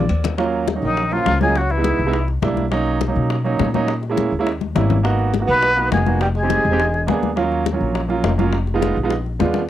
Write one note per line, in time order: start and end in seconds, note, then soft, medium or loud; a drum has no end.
0.00 0.29 D5 medium
0.09 0.77 D#2 medium
0.09 cowbell medium
0.24 cowbell medium
0.24 low bongo medium
0.24 low conga medium
0.38 0.64 F#3 medium
0.38 0.64 A#3 medium
0.38 0.64 C#4 medium
0.38 0.65 F4 medium
0.38 high bongo medium
0.53 high conga soft
0.68 high bongo medium
0.68 high conga medium
0.75 1.01 F#3 medium
0.75 1.01 A#3 medium
0.75 1.01 C#4 medium
0.75 1.01 D#4 medium
0.82 1.23 A#1 medium
0.82 1.13 D#3 medium
0.82 1.14 D#4 medium
0.82 high conga soft
0.97 high bongo medium
0.97 high conga soft
1.11 1.41 F3 medium
1.11 1.32 F#3 medium
1.11 1.32 A#3 medium
1.11 1.33 C#4 medium
1.11 1.41 F4 medium
1.11 1.33 F4 medium
1.11 high conga soft
1.26 1.93 C#2 medium
1.26 high bongo medium
1.26 low bongo medium
1.26 high conga medium
1.41 1.55 F#3 medium
1.41 1.58 G#3 medium
1.41 1.56 A#3 medium
1.41 1.56 C#4 medium
1.41 1.56 F4 medium
1.41 1.59 G#4 medium
1.41 high conga medium
1.56 1.73 F#3 medium
1.56 1.72 F#4 medium
1.56 high bongo medium
1.56 high conga soft
1.70 2.29 E3 medium
1.70 2.29 E4 medium
1.70 high bongo soft
1.70 high conga soft
1.77 1.98 G#3 medium
1.77 1.98 B3 medium
1.77 1.99 D#4 medium
1.77 1.99 E4 medium
1.84 high bongo medium
1.84 high conga medium
1.99 2.40 C2 medium
2.06 2.14 G#3 medium
2.06 2.14 B3 medium
2.06 2.14 D#4 medium
2.06 2.15 E4 loud
2.13 high bongo medium
2.13 high conga soft
2.28 high bongo soft
2.28 high conga soft
2.42 3.10 B1 medium
2.42 2.63 G3 medium
2.42 2.63 A#3 medium
2.42 2.64 D4 medium
2.42 2.64 E4 medium
2.42 high bongo medium
2.42 low bongo medium
2.42 high conga medium
2.57 high bongo soft
2.57 high conga medium
2.71 2.97 F#3 medium
2.71 2.97 A#3 medium
2.71 2.97 C#4 medium
2.71 2.98 D#4 loud
2.71 high bongo medium
2.71 high conga soft
2.86 high conga soft
3.01 high bongo medium
3.01 high conga medium
3.08 3.34 F#3 medium
3.08 3.34 A#3 medium
3.08 3.34 C#4 medium
3.08 3.34 D#4 medium
3.16 3.57 B2 medium
3.16 high conga soft
3.30 high bongo medium
3.30 high conga soft
3.44 3.65 F#3 medium
3.44 3.65 A#3 medium
3.44 3.66 C#4 medium
3.44 3.66 D#4 medium
3.44 high conga soft
3.60 4.27 A#2 medium
3.60 high bongo medium
3.60 low bongo medium
3.60 high conga medium
3.74 3.89 F#3 medium
3.74 3.89 A#3 medium
3.74 3.89 C#4 medium
3.74 3.89 D#4 loud
3.74 high conga medium
3.88 high bongo medium
3.88 high conga soft
4.03 high bongo soft
4.03 high conga soft
4.10 4.30 G#3 medium
4.10 4.31 A#3 medium
4.10 4.31 C#4 medium
4.10 4.31 E4 medium
4.17 high bongo medium
4.17 high conga medium
4.32 4.73 D#2 medium
4.39 4.47 G#3 medium
4.39 4.47 A#3 medium
4.39 4.47 C#4 medium
4.39 4.47 E4 loud
4.47 high bongo medium
4.47 high conga soft
4.61 high bongo soft
4.61 high conga medium
4.75 5.43 G#1 medium
4.75 4.96 G3 medium
4.75 4.96 A#3 medium
4.75 4.97 C#4 medium
4.75 4.97 E4 medium
4.75 high bongo medium
4.75 low bongo medium
4.75 low conga medium
4.90 high bongo soft
4.90 low conga loud
5.03 5.30 A#3 medium
5.03 5.30 B3 medium
5.03 5.30 D#4 medium
5.03 5.31 F#4 medium
5.03 high bongo medium
5.03 high conga soft
5.19 high conga soft
5.34 high bongo medium
5.34 high conga medium
5.40 5.66 A#3 medium
5.40 5.66 B3 medium
5.40 5.67 D#4 soft
5.40 5.67 F#4 medium
5.47 5.89 B1 medium
5.47 5.88 B3 medium
5.47 5.89 B4 loud
5.47 high conga soft
5.63 high bongo medium
5.63 high conga soft
5.76 5.97 A#3 medium
5.76 5.98 B3 medium
5.76 5.98 D#4 medium
5.76 5.98 F#4 medium
5.76 high conga soft
5.92 6.59 F1 medium
5.92 6.19 G#3 medium
5.92 6.19 G#4 medium
5.92 high bongo medium
5.92 low bongo medium
5.92 high conga medium
6.06 6.21 A#3 medium
6.06 6.21 B3 medium
6.06 6.21 D#4 medium
6.06 6.22 F#4 medium
6.06 high conga medium
6.21 6.28 G3 medium
6.21 6.28 G4 medium
6.21 high bongo medium
6.21 high conga soft
6.35 7.19 G#3 medium
6.35 7.19 G#4 medium
6.35 high bongo soft
6.35 high conga soft
6.43 6.63 G#3 medium
6.43 6.64 C4 medium
6.43 6.64 D#4 medium
6.43 6.64 G4 medium
6.50 high bongo medium
6.50 high conga medium
6.65 7.05 E1 medium
6.71 6.79 G#3 medium
6.71 6.79 C4 medium
6.71 6.79 D#4 medium
6.71 6.80 G4 loud
6.79 high bongo medium
6.79 high conga soft
6.94 high bongo soft
6.94 high conga soft
7.07 7.75 D#2 medium
7.07 7.28 A#3 medium
7.07 7.28 B3 medium
7.07 7.29 D4 medium
7.07 7.29 G#4 medium
7.07 high bongo medium
7.07 low bongo medium
7.07 high conga medium
7.23 high bongo soft
7.23 high conga medium
7.36 7.62 F#3 medium
7.36 7.62 A#3 medium
7.36 7.63 C#4 medium
7.36 7.63 F4 loud
7.36 high bongo medium
7.36 high conga soft
7.52 high conga soft
7.66 high bongo medium
7.66 high conga medium
7.73 7.99 F#3 medium
7.73 7.99 A#3 medium
7.73 7.99 C#4 medium
7.73 7.99 F4 medium
7.80 8.21 A#1 medium
7.80 high conga soft
7.95 high bongo medium
7.95 high conga soft
8.08 8.29 F#3 medium
8.08 8.30 A#3 medium
8.08 8.30 C#4 medium
8.08 8.30 F4 loud
8.08 high conga soft
8.24 8.91 F1 medium
8.24 high bongo medium
8.24 low bongo medium
8.24 high conga medium
8.38 8.53 F#3 medium
8.38 8.53 A#3 medium
8.38 8.54 C#4 medium
8.38 8.54 F4 loud
8.38 high conga medium
8.53 high bongo medium
8.53 high conga soft
8.67 high bongo soft
8.67 high conga soft
8.74 8.95 G#3 loud
8.74 8.95 B3 medium
8.74 8.95 D#4 medium
8.74 8.96 F4 loud
8.82 high bongo medium
8.82 high conga medium
8.97 9.38 A#1 medium
9.03 9.11 G#3 medium
9.03 9.11 B3 medium
9.03 9.12 D#4 medium
9.03 9.12 F4 loud
9.10 high bongo medium
9.10 high conga soft
9.26 high conga soft
9.39 9.70 D#2 medium
9.39 9.60 G#3 medium
9.39 9.61 B3 medium
9.39 9.61 D4 medium
9.39 9.61 F4 medium
9.39 low bongo medium
9.39 high conga medium
9.54 low bongo medium